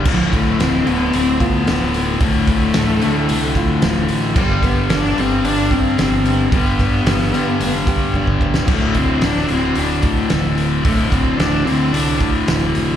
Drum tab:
CC |x---------------|----------------|x---------------|----------------|
HH |--o-o-o-o-o-o-o-|o-o-o-o-o-o-o-o-|--o-o-o-o-o-o-o-|o-o-o-o-o-o-----|
SD |----o-------o---|----o-------o---|----oo------o---|----oo---------o|
BD |o-o-------o-----|o-o-------o-----|o-o-------o-----|o-o-------o-ooo-|

CC |x---------------|----------------|
HH |--o-o-o-o-o-o-o-|o-o-o-o-o-o-o-o-|
SD |----oo------o---|----o-------o---|
BD |o-o-------o-----|o-o-------o-----|